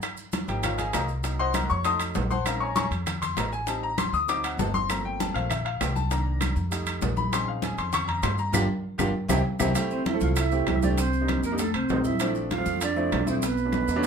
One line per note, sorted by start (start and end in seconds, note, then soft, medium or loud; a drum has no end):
0.02 high bongo medium
0.02 high conga soft
0.02 high timbale medium
0.02 claves medium
0.02 maracas medium
0.17 high conga soft
0.17 maracas medium
0.32 high bongo medium
0.32 high conga loud
0.32 high timbale medium
0.32 low timbale medium
0.32 maracas medium
0.48 0.91 G#1 medium
0.48 0.91 F3 medium
0.48 0.92 A#3 medium
0.48 0.92 D#4 medium
0.48 0.63 G4 medium
0.48 0.63 G5 medium
0.48 high conga soft
0.48 high timbale medium
0.48 maracas soft
0.63 0.79 F4 medium
0.63 0.79 A#4 medium
0.63 0.79 C#5 medium
0.63 0.77 F5 medium
0.63 high bongo medium
0.63 high conga soft
0.63 low conga medium
0.63 high timbale loud
0.63 claves medium
0.63 maracas medium
0.78 0.93 G#4 medium
0.78 0.93 D#5 medium
0.78 0.92 F5 medium
0.78 0.93 G#5 medium
0.78 high conga soft
0.78 low conga medium
0.78 high timbale medium
0.78 maracas medium
0.93 1.65 C2 medium
0.93 1.09 A#4 medium
0.93 1.09 D#5 medium
0.93 1.09 F5 medium
0.93 1.08 A#5 medium
0.93 high bongo medium
0.93 low bongo medium
0.93 high conga soft
0.93 high timbale loud
0.93 low timbale medium
0.93 claves medium
0.93 maracas medium
1.08 maracas soft
1.23 1.82 F#3 medium
1.23 1.82 A#3 soft
1.23 1.82 D#4 medium
1.23 high bongo medium
1.23 high conga soft
1.23 high timbale medium
1.23 maracas medium
1.39 1.55 C5 medium
1.39 1.53 D#5 medium
1.39 1.54 F#5 medium
1.39 1.54 C6 loud
1.39 high conga soft
1.54 1.70 A#4 medium
1.54 1.69 D#5 medium
1.54 1.70 F#5 medium
1.54 1.69 A#5 medium
1.54 high bongo medium
1.54 high conga loud
1.54 high timbale medium
1.54 low timbale medium
1.54 claves medium
1.54 maracas medium
1.70 2.13 F2 medium
1.70 1.85 C#5 medium
1.70 1.85 C#6 loud
1.70 high bongo soft
1.70 high conga soft
1.70 maracas soft
1.84 2.28 F#3 medium
1.84 2.29 A3 medium
1.84 2.29 D#4 medium
1.84 2.00 D#5 medium
1.84 2.00 A5 medium
1.84 2.00 C6 medium
1.84 2.00 D#6 loud
1.84 high bongo medium
1.84 high conga soft
1.84 high timbale medium
1.84 maracas medium
2.00 high bongo soft
2.00 high conga soft
2.00 high timbale medium
2.00 claves medium
2.00 maracas medium
2.15 2.87 A#1 medium
2.15 high bongo medium
2.15 low bongo medium
2.15 high conga medium
2.15 low timbale medium
2.15 maracas medium
2.31 2.46 C5 medium
2.31 2.46 F#5 medium
2.31 2.46 A5 medium
2.31 2.46 C6 loud
2.31 high bongo soft
2.31 high conga medium
2.31 maracas soft
2.45 2.66 G#3 medium
2.45 2.66 C4 soft
2.45 2.66 C#4 medium
2.45 2.66 D#4 medium
2.45 2.61 A#4 medium
2.45 2.61 D#5 medium
2.45 2.61 F5 medium
2.45 2.59 A#5 medium
2.45 high bongo medium
2.45 high conga soft
2.45 high timbale loud
2.45 claves medium
2.45 maracas medium
2.60 2.75 C#5 medium
2.60 2.75 G#5 medium
2.60 2.75 A#5 medium
2.60 2.74 C#6 loud
2.60 high conga soft
2.76 2.85 C#5 medium
2.76 2.86 G#5 medium
2.76 2.85 A#5 medium
2.76 2.85 C#6 loud
2.76 high bongo medium
2.76 high conga loud
2.76 high timbale medium
2.76 low timbale medium
2.76 maracas medium
2.91 3.34 F2 loud
2.91 high conga soft
2.91 high timbale medium
2.91 maracas soft
3.06 high bongo medium
3.06 high conga soft
3.06 low conga medium
3.06 high timbale loud
3.06 claves medium
3.06 maracas medium
3.22 3.37 C6 loud
3.22 high conga soft
3.22 low conga medium
3.22 high timbale medium
3.22 maracas medium
3.37 4.08 A1 medium
3.37 3.52 A#5 medium
3.37 high bongo medium
3.37 low bongo medium
3.37 high conga soft
3.37 high timbale loud
3.37 low timbale medium
3.37 claves medium
3.37 maracas medium
3.53 3.67 G#5 loud
3.53 maracas soft
3.67 3.88 G3 medium
3.67 3.88 C4 medium
3.67 3.88 D#4 medium
3.67 3.83 A5 medium
3.67 high bongo medium
3.67 high conga soft
3.67 high timbale medium
3.67 maracas medium
3.83 3.98 A#5 loud
3.83 high conga soft
3.98 4.13 C6 loud
3.98 high bongo medium
3.98 high conga loud
3.98 high timbale loud
3.98 low timbale medium
3.98 claves medium
3.98 maracas medium
4.13 4.55 D2 medium
4.13 4.28 D#6 loud
4.13 high bongo soft
4.13 high conga soft
4.13 maracas soft
4.28 4.86 F#3 medium
4.28 4.86 C4 soft
4.28 4.87 D#4 medium
4.28 4.43 D6 loud
4.28 high bongo medium
4.28 high conga soft
4.28 high timbale medium
4.28 maracas medium
4.44 4.59 F#5 medium
4.44 high bongo soft
4.44 high conga soft
4.44 high timbale loud
4.44 claves medium
4.44 maracas medium
4.57 5.29 G1 medium
4.57 4.74 A5 medium
4.57 high bongo medium
4.57 low bongo medium
4.57 high conga loud
4.57 low timbale medium
4.57 maracas medium
4.74 4.89 C6 loud
4.74 high bongo soft
4.74 high conga medium
4.74 maracas soft
4.89 5.32 F3 medium
4.89 5.32 A3 medium
4.89 5.33 A#3 soft
4.89 5.33 C4 medium
4.89 5.05 A#5 medium
4.89 high bongo medium
4.89 high conga soft
4.89 high timbale medium
4.89 claves medium
4.89 maracas medium
5.04 5.20 G5 loud
5.04 high conga soft
5.20 5.35 A5 medium
5.20 high bongo medium
5.20 high conga loud
5.20 high timbale medium
5.20 low timbale medium
5.20 maracas medium
5.34 5.77 A#1 medium
5.34 5.48 F3 soft
5.34 5.48 A3 soft
5.34 5.48 A#3 soft
5.34 5.48 C4 medium
5.34 5.49 F5 medium
5.34 high conga soft
5.34 high timbale medium
5.34 maracas soft
5.50 5.65 E5 medium
5.50 high bongo medium
5.50 high conga soft
5.50 low conga medium
5.50 high timbale medium
5.50 claves medium
5.50 maracas medium
5.65 5.80 F5 medium
5.65 high conga soft
5.65 high timbale medium
5.80 6.51 C2 medium
5.80 5.95 G5 medium
5.80 high bongo medium
5.80 low bongo medium
5.80 high conga soft
5.80 high timbale loud
5.80 low timbale medium
5.80 claves medium
5.80 maracas medium
5.96 6.10 A5 loud
5.96 high conga medium
5.96 maracas soft
6.10 6.54 D#3 medium
6.10 6.54 A#3 medium
6.10 6.55 D4 medium
6.10 6.54 A#5 medium
6.10 high bongo medium
6.10 high conga soft
6.10 high timbale medium
6.10 maracas medium
6.27 high conga soft
6.41 high bongo medium
6.41 high conga loud
6.41 high timbale loud
6.41 low timbale medium
6.41 claves medium
6.41 maracas medium
6.56 6.99 F2 medium
6.56 high bongo soft
6.56 high conga soft
6.56 maracas soft
6.70 7.29 G3 medium
6.70 7.29 A3 medium
6.70 7.30 D#4 medium
6.70 high bongo medium
6.70 high conga soft
6.70 high timbale medium
6.70 maracas medium
6.86 high bongo soft
6.86 high conga soft
6.86 high timbale loud
6.86 claves medium
6.86 maracas medium
7.02 7.73 A#1 loud
7.02 high bongo medium
7.02 low bongo medium
7.02 high conga medium
7.02 low timbale medium
7.02 maracas medium
7.17 7.32 B5 loud
7.17 high bongo soft
7.17 high conga medium
7.17 maracas soft
7.32 8.50 C4 soft
7.32 8.50 C#4 medium
7.32 8.51 D#4 medium
7.32 8.50 G#4 medium
7.32 7.48 C6 loud
7.32 high bongo medium
7.32 high conga soft
7.32 high timbale medium
7.32 claves medium
7.32 maracas medium
7.47 7.63 F5 medium
7.47 high conga soft
7.62 7.78 G#5 medium
7.62 high bongo medium
7.62 high conga loud
7.62 high timbale medium
7.62 low timbale medium
7.62 maracas medium
7.78 8.20 F2 medium
7.78 7.93 C6 medium
7.78 high conga soft
7.78 high timbale medium
7.78 maracas soft
7.93 8.08 C#6 loud
7.93 high bongo medium
7.93 high conga soft
7.93 low conga medium
7.93 high timbale loud
7.93 claves medium
7.93 maracas medium
8.08 8.23 A#5 loud
8.08 high conga soft
8.08 low conga medium
8.08 high timbale medium
8.23 8.52 G2 medium
8.23 8.38 C6 medium
8.23 high bongo medium
8.23 low bongo medium
8.23 high conga soft
8.23 high timbale loud
8.23 low timbale medium
8.23 claves medium
8.23 maracas medium
8.38 8.53 A#5 loud
8.38 maracas soft
8.53 8.65 G1 loud
8.53 8.63 D4 loud
8.53 8.63 F4 loud
8.53 8.63 G4 medium
8.53 low bongo loud
8.53 high conga loud
8.53 high timbale loud
8.53 claves loud
8.53 maracas loud
8.98 9.11 G1 loud
8.98 9.09 D4 loud
8.98 9.09 F4 medium
8.98 9.08 G4 loud
8.98 low bongo loud
8.98 high conga medium
8.98 high timbale loud
8.98 claves loud
8.98 maracas loud
9.28 9.41 C2 loud
9.28 9.39 C4 loud
9.28 9.39 E4 loud
9.28 9.39 G4 loud
9.28 low bongo loud
9.28 high conga loud
9.28 high timbale loud
9.28 claves loud
9.28 maracas loud
9.59 9.72 C2 medium
9.59 9.70 C4 loud
9.59 9.70 E4 loud
9.59 9.70 G4 loud
9.59 low bongo medium
9.59 high conga loud
9.59 high timbale loud
9.59 claves loud
9.59 maracas loud
9.75 10.02 A3 medium
9.75 10.02 C4 medium
9.75 10.02 E4 medium
9.75 10.02 G4 loud
9.75 high bongo medium
9.75 high conga soft
9.75 high timbale medium
9.75 claves medium
9.75 maracas medium
9.91 10.08 C4 medium
9.91 10.06 C5 medium
9.91 high bongo soft
9.91 high conga soft
9.91 maracas soft
10.06 10.21 E4 medium
10.06 10.21 E5 medium
10.06 high bongo medium
10.06 high conga loud
10.06 high timbale medium
10.06 low timbale medium
10.06 maracas soft
10.14 10.41 A3 medium
10.14 10.41 C4 medium
10.14 10.41 E4 medium
10.14 10.41 A4 medium
10.21 10.64 C2 medium
10.21 10.29 F4 medium
10.21 10.29 F5 medium
10.21 high bongo soft
10.21 high conga medium
10.21 maracas medium
10.36 10.67 E4 medium
10.36 10.66 E5 medium
10.36 high bongo medium
10.36 high conga soft
10.36 high timbale loud
10.36 claves medium
10.36 maracas medium
10.51 10.73 A3 medium
10.51 10.73 C4 medium
10.51 10.74 E4 medium
10.51 10.74 G4 medium
10.51 high conga soft
10.51 maracas soft
10.67 11.38 C2 medium
10.67 10.82 E4 medium
10.67 10.83 E5 medium
10.67 high bongo soft
10.67 low bongo medium
10.67 high conga medium
10.67 high timbale medium
10.67 low timbale medium
10.67 claves medium
10.67 maracas soft
10.82 10.98 A3 medium
10.82 10.98 C4 medium
10.82 10.91 D4 medium
10.82 10.98 E4 medium
10.82 10.98 G4 medium
10.82 10.89 D5 medium
10.82 high conga medium
10.82 maracas medium
10.98 11.41 C4 medium
10.98 11.41 C5 medium
10.98 high bongo medium
10.98 high conga soft
10.98 high timbale medium
10.98 maracas medium
11.13 high bongo soft
11.13 high conga soft
11.13 maracas soft
11.21 11.42 G3 medium
11.21 11.42 A#3 medium
11.21 11.43 D4 medium
11.21 11.43 D#4 medium
11.28 high bongo medium
11.28 high conga loud
11.28 high timbale medium
11.28 low timbale medium
11.28 claves medium
11.28 maracas soft
11.43 11.72 F2 medium
11.43 11.60 A#3 medium
11.43 11.58 A#4 medium
11.43 high bongo soft
11.43 high conga soft
11.43 maracas medium
11.52 11.59 G3 medium
11.52 11.59 A#3 medium
11.52 11.59 D4 medium
11.52 11.60 D#4 medium
11.58 11.74 A3 medium
11.58 11.74 A4 medium
11.58 high bongo medium
11.58 high conga soft
11.58 high timbale medium
11.58 maracas medium
11.74 11.88 C2 medium
11.74 12.07 C4 medium
11.74 12.03 C5 medium
11.74 high conga soft
11.74 high timbale medium
11.74 claves medium
11.74 maracas soft
11.89 12.61 A#1 medium
11.89 12.11 G3 medium
11.89 12.11 A3 medium
11.89 12.12 C4 medium
11.89 12.12 D#4 medium
11.89 high bongo soft
11.89 low bongo medium
11.89 high conga medium
11.89 low timbale medium
11.89 maracas soft
12.04 12.33 E4 medium
12.04 12.33 E5 medium
12.04 high conga medium
12.04 maracas medium
12.20 12.47 F3 medium
12.20 12.47 A3 medium
12.20 12.47 C4 medium
12.20 12.47 D4 medium
12.20 high bongo medium
12.20 high conga soft
12.20 high timbale medium
12.20 claves medium
12.20 maracas medium
12.35 high bongo soft
12.35 high conga soft
12.35 maracas soft
12.51 12.80 F4 medium
12.51 12.80 F5 medium
12.51 high bongo medium
12.51 high conga loud
12.51 high timbale medium
12.51 low timbale medium
12.51 maracas soft
12.58 12.85 F3 medium
12.58 12.85 A3 medium
12.58 12.85 C4 medium
12.58 12.85 F4 medium
12.66 13.09 F2 medium
12.66 high bongo soft
12.66 high conga medium
12.66 maracas medium
12.81 13.29 D4 medium
12.81 13.25 D5 medium
12.81 high bongo medium
12.81 high conga soft
12.81 high timbale medium
12.81 claves medium
12.81 maracas medium
12.96 13.18 F3 medium
12.96 13.18 A3 medium
12.96 13.18 C4 medium
12.96 13.18 E4 medium
12.96 high conga soft
12.96 maracas soft
13.12 13.83 B1 medium
13.12 high bongo soft
13.12 low bongo medium
13.12 high conga medium
13.12 high timbale medium
13.12 low timbale medium
13.12 claves medium
13.12 maracas soft
13.26 13.42 F3 medium
13.26 13.42 A3 medium
13.26 13.42 C4 medium
13.26 13.34 C4 medium
13.26 13.42 E4 medium
13.26 13.36 C5 medium
13.26 high conga medium
13.26 maracas medium
13.42 14.07 B3 medium
13.42 14.07 B4 medium
13.42 high bongo medium
13.42 high conga soft
13.42 high timbale medium
13.42 maracas medium
13.57 high bongo soft
13.57 maracas soft
13.65 13.87 F#3 medium
13.65 13.87 A3 medium
13.65 13.87 C#4 medium
13.65 13.87 D4 medium
13.72 high bongo medium
13.72 high conga loud
13.72 high timbale medium
13.72 claves medium
13.72 maracas soft
13.88 14.07 E2 medium
13.88 high bongo soft
13.88 high conga soft
13.88 high timbale medium
13.88 maracas medium
13.96 14.04 F#3 loud
13.96 14.04 A3 medium
13.96 14.04 C#4 medium
13.96 14.04 D4 loud
14.03 low timbale loud
14.03 maracas medium